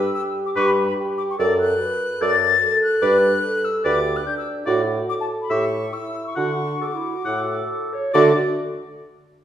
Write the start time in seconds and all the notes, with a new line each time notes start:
Already playing: G4 E6
0.14 E6
0.46 D6
0.55 G2 G4 B4 C#6
0.67 B5
0.86 B5
0.97 G4
1.18 D6
1.30 C#6
1.39 F#2 A4 D5 D6
1.60 F#6
1.80 B4
2.21 F#2 A4 D5 A6
2.61 A4
2.82 F#6
3.02 G2 B4 D5
3.43 A4
3.64 E6
3.84 D2 G4 B4 D5 D6
4.16 F#6
4.26 D4 G6
4.37 E6
4.66 A2 F#4 D5
5.07 A4 D6
5.20 A5
5.42 B5
5.50 A2 G4 E5 C#6
5.92 E4 E6
6.27 C#6
6.35 D3 F#4 F#5 C#6
6.81 A4 D6
6.93 E4
7.15 F#4
7.25 A2 A4 F#5
7.93 C#5
8.13 D3 A3 F#4 D5 D6